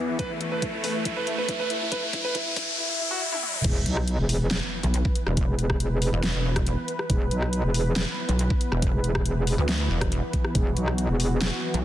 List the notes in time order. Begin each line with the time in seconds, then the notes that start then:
Already playing: E2 E3 B3, riser
0.09 E3
0.19 A3 B4, kick, closed hi-hat
0.30 E4
0.41 E4, closed hi-hat
0.52 B4
0.62 E4, kick, closed hi-hat
0.73 E4
0.84 B4, open hi-hat
0.95 E4
1.05 E4, kick, closed hi-hat
1.17 B4
1.27 E4, closed hi-hat
1.38 B4
1.49 E4, kick, closed hi-hat
1.60 B4
1.70 E4, closed hi-hat
1.81 E4
1.92 B4, kick, closed hi-hat
2.03 E4
2.13 E4, kick, closed hi-hat
2.24 B4
2.35 E4, kick, closed hi-hat
2.46 E4
2.56 E4, kick, open hi-hat
2.78 E4, swell
2.89 E4
3.00 E4
3.11 F#4
3.21 E4
3.32 E4, high tom
3.43 E4, mid tom
3.54 E4, mid tom
3.64 E1 E3 B3 B4, kick, closed hi-hat, crash, sub drop
3.86 B1, closed hi-hat
3.97 cross-stick
4.08 closed hi-hat
4.19 E1
4.29 open hi-hat
4.51 snare, closed hi-hat
4.83 B1, closed hi-hat
4.94 closed hi-hat
5.05 kick
5.15 closed hi-hat
5.27 E1, cross-stick
5.37 kick, closed hi-hat
5.48 E1
5.59 closed hi-hat
5.70 kick, cross-stick
5.80 closed hi-hat
6.02 open hi-hat
6.13 E1
6.23 snare, closed hi-hat
6.34 E1
6.56 kick, cross-stick, closed hi-hat
6.67 closed hi-hat
6.88 closed hi-hat
6.99 cross-stick
7.10 E1, kick, closed hi-hat
7.31 B1, closed hi-hat
7.42 cross-stick
7.53 closed hi-hat
7.64 E1
7.74 open hi-hat
7.96 snare, closed hi-hat
8.29 B1, closed hi-hat
8.39 closed hi-hat
8.50 kick
8.61 closed hi-hat
8.72 E1, cross-stick
8.82 kick, closed hi-hat
8.93 E1
9.04 closed hi-hat
9.15 kick, cross-stick
9.26 closed hi-hat
9.47 open hi-hat
9.58 D2
9.69 snare, closed hi-hat
9.90 E1
10.01 kick, cross-stick, closed hi-hat
10.12 closed hi-hat
10.33 kick, closed hi-hat
10.45 cross-stick
10.55 E1 F#4, kick, closed hi-hat
10.77 B1, closed hi-hat
10.88 cross-stick
10.98 closed hi-hat
11.09 E1
11.20 open hi-hat
11.41 snare, closed hi-hat
11.74 B1, closed hi-hat